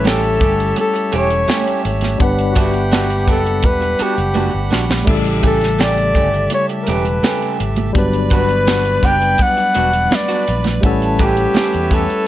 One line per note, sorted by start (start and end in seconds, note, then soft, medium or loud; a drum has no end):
0.00 0.43 A1 loud
0.00 2.15 G3 medium
0.00 2.16 A3 medium
0.00 2.16 C#4 medium
0.00 2.17 E4 medium
0.00 7.91 G4 medium
0.00 1.51 A4 medium
0.00 2.18 A4 medium
0.00 1.48 C#5 medium
0.00 2.18 C#5 medium
0.00 1.92 E5 soft
0.00 2.18 E5 medium
0.00 2.18 A5 medium
0.04 0.20 A3 medium
0.04 0.20 C#4 medium
0.04 0.20 G4 medium
0.04 0.78 A4 loud
0.04 snare loud
0.04 closed hi-hat loud
0.04 high conga medium
0.23 muted clean electric guitar stroke soft
0.23 closed hi-hat medium
0.40 0.72 G1 medium
0.40 0.53 A3 medium
0.40 0.53 C#4 medium
0.40 0.53 G4 medium
0.40 kick medium
0.40 closed hi-hat medium
0.58 muted clean electric guitar stroke soft
0.58 closed hi-hat soft
0.76 1.17 A4 medium
0.76 muted clean electric guitar stroke soft
0.76 closed hi-hat medium
0.76 muted conga medium
0.94 muted clean electric guitar stroke soft
0.94 closed hi-hat medium
1.12 1.44 E1 medium
1.12 1.28 A3 medium
1.12 1.28 C#4 medium
1.12 1.28 G4 medium
1.12 1.86 C#5 loud
1.12 closed hi-hat medium
1.30 closed hi-hat soft
1.48 1.81 A3 medium
1.48 1.82 C#4 medium
1.48 1.82 G4 loud
1.48 2.52 C#5 medium
1.48 snare loud
1.48 closed hi-hat medium
1.48 high conga medium
1.67 closed hi-hat medium
1.84 2.16 G#1 medium
1.84 muted clean electric guitar stroke soft
1.84 closed hi-hat medium
2.01 muted clean electric guitar stroke soft
2.01 snare soft
2.01 closed hi-hat medium
2.01 high conga medium
2.18 3.28 G1 loud
2.18 5.02 G3 medium
2.18 5.03 B3 medium
2.18 5.04 D4 medium
2.18 5.05 D4 medium
2.18 5.05 F#5 medium
2.18 5.04 F#5 medium
2.18 5.05 B5 medium
2.18 kick loud
2.18 closed hi-hat medium
2.18 muted conga soft
2.24 5.05 B4 medium
2.39 closed hi-hat medium
2.52 2.60 F#4 medium
2.52 closed hi-hat medium
2.56 2.71 B3 medium
2.56 2.72 D4 loud
2.56 2.72 F#4 medium
2.56 3.29 G4 medium
2.56 4.74 E5 medium
2.56 kick medium
2.74 closed hi-hat soft
2.92 3.07 B3 medium
2.92 3.07 D4 medium
2.92 3.08 F#4 medium
2.92 snare loud
2.92 closed hi-hat loud
2.92 high conga medium
3.10 muted clean electric guitar stroke soft
3.10 closed hi-hat medium
3.28 3.64 F#1 medium
3.28 3.40 B3 medium
3.28 3.40 D4 medium
3.28 3.40 G4 medium
3.28 3.67 A4 medium
3.28 kick medium
3.28 closed hi-hat medium
3.45 muted clean electric guitar stroke soft
3.45 closed hi-hat soft
3.63 3.95 E1 loud
3.63 4.04 B4 loud
3.63 muted clean electric guitar stroke soft
3.63 kick loud
3.63 closed hi-hat loud
3.63 muted conga medium
3.81 muted clean electric guitar stroke soft
3.81 closed hi-hat medium
3.99 4.15 B3 medium
3.99 4.15 D4 medium
3.99 4.15 F#4 medium
3.99 4.73 G4 medium
3.99 muted fingered electric bass stroke soft
3.99 closed hi-hat medium
4.17 4.49 F#1 medium
4.17 muted clean electric guitar stroke soft
4.17 closed hi-hat medium
4.34 4.50 B3 medium
4.34 4.51 D4 medium
4.34 4.51 F#4 medium
4.34 high conga medium
4.53 4.70 G1 medium
4.53 muted clean electric guitar stroke soft
4.71 5.03 A#1 medium
4.71 4.83 B3 medium
4.71 4.83 D4 medium
4.71 4.84 F#4 medium
4.71 snare medium
4.89 muted clean electric guitar stroke soft
4.89 snare loud
4.89 high conga medium
5.05 6.17 A1 loud
5.05 7.91 C#3 medium
5.05 7.90 G3 medium
5.05 7.90 A3 medium
5.05 7.92 A4 medium
5.05 7.92 E5 medium
5.05 7.92 A5 medium
5.05 kick loud
5.05 crash medium
5.05 muted conga soft
5.09 7.92 E4 medium
5.09 7.92 A4 medium
5.26 closed hi-hat medium
5.43 5.58 A3 medium
5.43 5.59 C#4 medium
5.43 5.59 G4 medium
5.43 kick medium
5.43 closed hi-hat medium
5.47 5.84 A4 loud
5.61 snare soft
5.61 closed hi-hat soft
5.79 5.94 A3 medium
5.79 5.95 C#4 medium
5.79 5.95 G4 medium
5.79 6.53 D5 loud
5.79 snare loud
5.79 closed hi-hat loud
5.79 high conga medium
5.97 muted clean electric guitar stroke soft
5.97 closed hi-hat soft
6.15 6.46 G1 medium
6.15 6.27 A3 medium
6.15 6.27 C#4 medium
6.15 6.28 G4 medium
6.15 kick medium
6.15 closed hi-hat medium
6.34 muted clean electric guitar stroke soft
6.34 closed hi-hat soft
6.50 6.66 C#5 loud
6.50 muted clean electric guitar stroke soft
6.50 closed hi-hat loud
6.50 muted conga medium
6.69 muted clean electric guitar stroke soft
6.69 closed hi-hat medium
6.83 6.91 A#4 medium
6.87 7.19 E1 medium
6.87 7.03 A3 medium
6.87 7.03 C#4 medium
6.87 7.03 G4 medium
6.87 7.60 B4 medium
6.87 closed hi-hat medium
6.87 muted conga soft
7.05 muted clean electric guitar stroke soft
7.05 closed hi-hat medium
7.23 7.57 A3 medium
7.23 7.57 C#4 medium
7.23 7.57 G4 loud
7.23 snare loud
7.23 closed hi-hat medium
7.23 high conga medium
7.42 closed hi-hat medium
7.60 7.91 G#1 medium
7.60 muted clean electric guitar stroke soft
7.60 closed hi-hat medium
7.76 muted clean electric guitar stroke soft
7.76 closed hi-hat medium
7.76 high conga medium
7.93 8.99 G1 loud
7.93 10.78 G3 medium
7.93 10.79 B3 medium
7.93 10.79 D4 medium
7.93 12.27 B4 medium
7.93 10.80 D5 medium
7.93 10.80 B5 medium
7.93 kick loud
7.93 closed hi-hat medium
7.93 muted conga soft
7.97 10.80 F#3 medium
7.97 10.81 B4 medium
8.13 closed hi-hat soft
8.30 8.46 B3 medium
8.30 8.47 D4 medium
8.30 8.47 F#4 loud
8.30 9.08 B4 loud
8.30 kick loud
8.30 closed hi-hat medium
8.49 closed hi-hat soft
8.67 8.82 B3 medium
8.67 8.83 D4 medium
8.67 8.83 F#4 medium
8.67 snare loud
8.67 closed hi-hat loud
8.67 high conga medium
8.85 muted clean electric guitar stroke soft
8.85 closed hi-hat medium
9.03 9.34 F#1 medium
9.03 9.15 B3 medium
9.03 9.15 D4 medium
9.03 9.16 G4 medium
9.03 9.43 G5 loud
9.03 kick medium
9.03 closed hi-hat medium
9.21 muted clean electric guitar stroke soft
9.21 closed hi-hat soft
9.38 10.17 F#5 loud
9.38 muted clean electric guitar stroke soft
9.38 kick loud
9.38 closed hi-hat loud
9.38 muted conga medium
9.57 muted clean electric guitar stroke soft
9.57 closed hi-hat medium
9.74 10.07 E1 medium
9.74 9.90 B3 medium
9.74 9.90 D4 medium
9.74 9.91 F#4 medium
9.74 closed hi-hat medium
9.74 muted conga soft
9.93 muted clean electric guitar stroke soft
9.93 closed hi-hat medium
10.11 10.67 D5 medium
10.11 muted clean electric guitar stroke soft
10.11 snare loud
10.11 closed hi-hat medium
10.11 high conga medium
10.29 10.45 B3 medium
10.29 10.45 D4 medium
10.29 10.44 F#4 medium
10.29 closed hi-hat medium
10.47 10.79 A#1 medium
10.47 muted clean electric guitar stroke soft
10.47 closed hi-hat medium
10.64 muted clean electric guitar stroke soft
10.64 snare soft
10.64 closed hi-hat medium
10.64 high conga medium
10.81 11.46 A1 loud
10.81 12.27 G3 medium
10.81 12.27 A3 medium
10.81 12.27 C#4 medium
10.81 12.27 E4 medium
10.81 12.27 C#5 medium
10.81 12.27 E5 medium
10.81 12.27 F#5 medium
10.81 12.27 A5 medium
10.81 kick loud
10.81 closed hi-hat medium
10.81 muted conga soft
10.86 12.27 A4 medium
11.02 12.27 A5 medium
11.02 closed hi-hat medium
11.19 11.34 A3 medium
11.19 11.35 C#4 medium
11.19 11.35 G4 loud
11.19 11.95 G4 loud
11.19 kick medium
11.19 closed hi-hat medium
11.37 closed hi-hat soft
11.54 11.70 A3 medium
11.54 11.70 C#4 medium
11.54 11.70 G4 medium
11.54 muted fingered electric bass stroke soft
11.54 snare loud
11.54 closed hi-hat loud
11.54 high conga medium
11.73 12.05 E2 medium
11.73 muted clean electric guitar stroke medium
11.73 closed hi-hat medium
11.91 12.03 A3 medium
11.91 12.03 C#4 medium
11.91 12.03 G4 medium
11.91 12.27 A4 loud
11.91 kick medium
11.91 closed hi-hat medium
12.09 muted clean electric guitar stroke soft
12.09 closed hi-hat soft